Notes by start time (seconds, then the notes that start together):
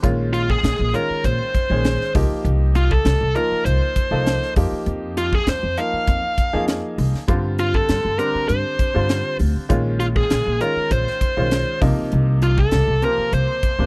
0.02 A#1 D#3 G#3 C#4 F4, kick, closed hi-hat
0.33 F4, closed hi-hat
0.50 G#4, kick
0.63 A#1, snare, closed hi-hat
0.79 A#1
0.93 D#3 G#3 C#4 F4 A#4, closed hi-hat
1.10 muted upright bass stroke
1.24 A#1 C5, kick, closed hi-hat
1.55 muted upright bass stroke, kick, closed hi-hat
1.70 A#1 D#3 G#3 C#4 G#4
1.85 snare, closed hi-hat
2.01 snare
2.15 C2 F3 A#3 D#4 G4, kick, open hi-hat
2.30 muted upright bass stroke
2.45 C2, closed hi-hat
2.75 F4, closed hi-hat
2.91 A4, kick
3.05 C2, snare, closed hi-hat
3.21 C2
3.35 F3 A#3 D#4 F4 A#4, closed hi-hat
3.51 muted upright bass stroke
3.65 C2 C5, closed hi-hat
3.96 muted upright bass stroke, kick, closed hi-hat
4.11 C2 F3 A#3 D#4 A4
4.26 snare, closed hi-hat
4.43 snare
4.56 F2 F3 A#3 D#4 G4, kick, open hi-hat
4.72 muted upright bass stroke
4.86 F2, closed hi-hat
5.17 F4, closed hi-hat
5.33 G#4, kick
5.47 F2 C5, snare, closed hi-hat
5.63 F2
5.77 F3 A#3 D#4 A#4 F5, closed hi-hat
5.93 muted upright bass stroke
6.07 F2, kick, closed hi-hat
6.38 muted upright bass stroke, kick, closed hi-hat
6.53 F2 F3 A#3 D#4 G#4
6.68 snare, closed hi-hat
6.98 C2, open hi-hat
7.14 muted upright bass stroke, snare
7.28 G2 D3 G3 C4 F4, kick, closed hi-hat
7.58 F4, closed hi-hat
7.74 A4, kick
7.89 G2, snare, closed hi-hat
8.05 G2
8.18 D3 G3 C4 D4 A#4, closed hi-hat
8.35 muted upright bass stroke
8.48 G2 C5, closed hi-hat
8.79 muted upright bass stroke, kick, closed hi-hat
8.94 G2 D3 G3 C4 F4
9.09 snare, closed hi-hat
9.39 D2, open hi-hat
9.56 muted upright bass stroke
9.69 A#1 D#3 G#3 C#4 F4, kick, closed hi-hat
10.00 F4, closed hi-hat
10.16 G#4, kick
10.30 A#1, snare, closed hi-hat
10.46 A#1
10.60 D#3 G#3 C#4 F4 A#4, closed hi-hat
10.77 muted upright bass stroke
10.91 A#1 C5, kick, closed hi-hat
11.07 snare
11.21 muted upright bass stroke, kick, closed hi-hat
11.37 B1 D#3 G#3 C#4 F4
11.51 snare, closed hi-hat
11.81 C2 C3 F3 A#3 D#4, kick, open hi-hat
11.98 muted upright bass stroke
12.12 C2, closed hi-hat
12.42 F4, closed hi-hat
12.58 A4, kick
12.71 C2, snare, closed hi-hat
12.88 C2
13.02 C3 F3 A#3 C4 A#4, closed hi-hat
13.18 muted upright bass stroke
13.32 C2 C5, closed hi-hat
13.63 muted upright bass stroke, kick, closed hi-hat
13.79 D#2 C3 F3 A#3 D4